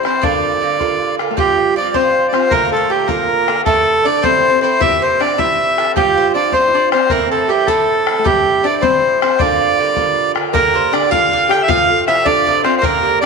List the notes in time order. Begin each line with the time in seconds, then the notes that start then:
0.03 E3 C4 E4 C5, bodhran
0.22 G2 D3 A#3 D4 F4 D5, bodhran
0.34 bodhran
0.61 G2 D3 A#3 F4
0.79 G2 D3 A#3 F4, bodhran
1.19 D3 A#3 F4, bodhran
1.31 A3
1.37 G2 F3 G3 C4 F4 G4, bodhran
1.48 bodhran
1.76 G2 F3 C4 F4 D5
1.94 G2 F3 C4 F4 C5, bodhran
2.29 D5
2.33 F3 C4 F4 C5, bodhran
2.50 A#2 D3 A3 A#3 F4 A#4, bodhran
2.62 A#4, bodhran
2.72 A3 A4
2.76 A#4
2.90 A#2 D3 A3 F4 G4
3.07 D3 A#3 F4 A#4, bodhran
3.11 A#2
3.48 D3 A3 A#3 F4, bodhran
3.65 C3 E3 A3 E4 A4, bodhran
3.77 bodhran
4.05 C3 E3 A3 D4 E4 D5
4.22 C3 E3 A3 C4 E4 C5, bodhran
4.38 C4
4.50 C4
4.61 A3 C4 E4 C5
4.66 E3
4.80 A#2 E3 C4 E4 G4 E5, bodhran
4.92 bodhran
5.02 C5
5.19 A#2 E3 C4 D4 G4 D5, bodhran
5.38 A#2 E3 C4 E4 G4 E5, bodhran
5.77 E3 C4 G4 A4, bodhran
5.96 G2 F3 G3 C4 F4 G4, bodhran
6.07 bodhran
6.18 C5
6.34 G2 F3 C4 D4 F4 D5
6.52 G2 F3 C4 F4 C5, bodhran
6.68 E4
6.74 D4 D5
6.91 F3 C4 F4 C5, bodhran
7.09 A2 E3 A#3 C4 E4 A#4, bodhran
7.21 bodhran
7.31 A3 A4
7.49 A2 E3 G3 C4 E4 G4
7.67 A2 E3 A3 C4 E4 A4, bodhran
8.06 E3 C4 E4, bodhran
8.19 A3
8.24 G2 E3 G3 C4 E4 G4, bodhran
8.36 bodhran
8.63 G2 E3 C4 D4 E4 D5
8.81 G2 E3 C4 E4 C5, bodhran
9.21 E3 C4 E4 C5, bodhran
9.39 G2 D3 A#3 D4 F4 D5, bodhran
9.50 bodhran
9.78 G2 D3 A#3 F4
9.96 G2 D3 A#3 F4, bodhran
10.35 D3 A#3 F4, bodhran
10.53 A#2 D3 A#3 D4 G4 A#4, bodhran
10.74 D3 D4 G4 C5, bodhran
10.92 A#2 D3 D4 G4 D5, bodhran
11.10 A#2 D3 D4 F4 G4 F5, bodhran
11.31 A#2 D3 D4 G4 F5, bodhran
11.49 D3 D4 G4 G5, bodhran
11.62 E5
11.68 C3 F3 A3 F4 F5, bodhran
11.89 F3 A3 F4, bodhran
12.07 C3 F3 A3 E4 F4 E5, bodhran
12.25 C3 F3 A3 D4 F4 D5, bodhran
12.45 C3 F3 A3 F4 D5, bodhran
12.64 F3 A3 C4 F4 C5, bodhran
12.78 C5
12.82 A#2 D3 A#3 D4 G4 A#4, bodhran
13.03 D3 D4 G4, bodhran
13.21 A#2 D3 D4 D5